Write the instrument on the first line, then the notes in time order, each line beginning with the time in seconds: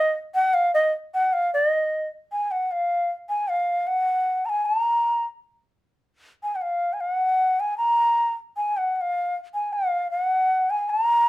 bansuri
Already playing: D#5
0.35 F#5
0.54 F5
0.74 D#5
1.14 F#5
1.33 F5
1.54 D5
1.68 D#5
2.32 G#5
2.51 F#5
2.71 F5
3.29 G#5
3.48 F5
3.87 F#5
4.45 G#5 A#5
4.66 A#5
6.43 G#5
6.55 F#5
6.62 F5
6.93 G#5
7.00 F#5
7.60 G#5
7.78 A#5
8.57 G#5
8.77 F#5
8.96 F#5
9.01 F5
9.54 G#5
9.73 F5
10.11 F5
10.22 F#5
10.70 G#5
10.90 A#5